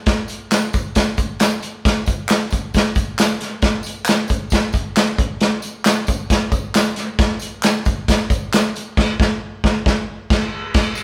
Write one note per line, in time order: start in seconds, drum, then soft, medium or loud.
0.06 kick loud
0.06 snare loud
0.06 closed hi-hat medium
0.06 tambourine soft
0.28 closed hi-hat medium
0.28 tambourine medium
0.51 snare loud
0.51 clap medium
0.51 closed hi-hat medium
0.51 tambourine loud
0.73 kick medium
0.73 closed hi-hat medium
0.73 tambourine medium
0.95 kick medium
0.95 snare loud
0.95 closed hi-hat loud
0.95 tambourine medium
1.17 kick medium
1.17 closed hi-hat medium
1.17 tambourine soft
1.40 snare loud
1.40 clap medium
1.40 closed hi-hat medium
1.40 tambourine medium
1.62 closed hi-hat medium
1.62 tambourine soft
1.85 kick loud
1.85 snare loud
1.85 closed hi-hat medium
1.85 tambourine soft
2.06 kick medium
2.06 closed hi-hat medium
2.06 tambourine medium
2.29 snare loud
2.29 clap medium
2.29 closed hi-hat medium
2.29 tambourine medium
2.50 kick medium
2.50 closed hi-hat medium
2.50 tambourine soft
2.74 kick medium
2.74 snare loud
2.74 closed hi-hat medium
2.74 tambourine medium
2.95 kick loud
2.95 closed hi-hat medium
2.95 tambourine soft
3.19 snare loud
3.19 clap medium
3.19 closed hi-hat loud
3.19 tambourine medium
3.41 snare soft
3.41 closed hi-hat medium
3.62 kick loud
3.62 snare loud
3.62 closed hi-hat medium
3.62 tambourine soft
3.83 closed hi-hat medium
3.83 tambourine medium
4.06 snare loud
4.06 clap loud
4.06 closed hi-hat medium
4.06 tambourine loud
4.28 kick medium
4.28 closed hi-hat medium
4.28 tambourine medium
4.50 kick medium
4.50 snare loud
4.50 closed hi-hat loud
4.50 tambourine medium
4.73 kick medium
4.73 closed hi-hat medium
4.73 tambourine soft
4.96 snare loud
4.96 clap medium
4.96 closed hi-hat loud
4.96 tambourine medium
5.18 kick loud
5.18 closed hi-hat medium
5.41 snare medium
5.41 closed hi-hat medium
5.41 tambourine soft
5.62 closed hi-hat medium
5.62 tambourine medium
5.85 snare loud
5.85 clap loud
5.85 closed hi-hat medium
5.85 tambourine loud
6.07 kick medium
6.07 closed hi-hat medium
6.07 tambourine medium
6.30 kick loud
6.30 snare loud
6.30 closed hi-hat loud
6.30 tambourine medium
6.52 kick loud
6.52 closed hi-hat medium
6.52 tambourine soft
6.74 snare loud
6.74 clap medium
6.74 closed hi-hat loud
6.74 tambourine medium
6.96 snare soft
6.96 closed hi-hat medium
6.96 tambourine soft
7.19 kick loud
7.19 snare medium
7.19 closed hi-hat medium
7.39 closed hi-hat medium
7.39 tambourine medium
7.63 snare loud
7.63 clap loud
7.63 closed hi-hat medium
7.63 tambourine medium
7.85 kick loud
7.85 closed hi-hat medium
7.85 tambourine medium
8.08 kick loud
8.08 snare loud
8.08 closed hi-hat loud
8.08 tambourine medium
8.30 kick loud
8.30 closed hi-hat medium
8.30 tambourine soft
8.53 snare loud
8.53 clap medium
8.53 closed hi-hat medium
8.53 tambourine medium
8.76 closed hi-hat medium
8.76 tambourine soft
8.97 kick loud
8.97 snare loud
8.97 crash medium
9.20 kick loud
9.20 snare loud
9.64 kick loud
9.64 snare loud
9.86 kick loud
9.86 snare loud
10.30 kick loud
10.30 snare loud
10.30 crash medium
10.74 kick loud
10.74 snare loud
10.74 crash medium
10.74 tambourine soft
10.95 ride medium
10.95 tambourine medium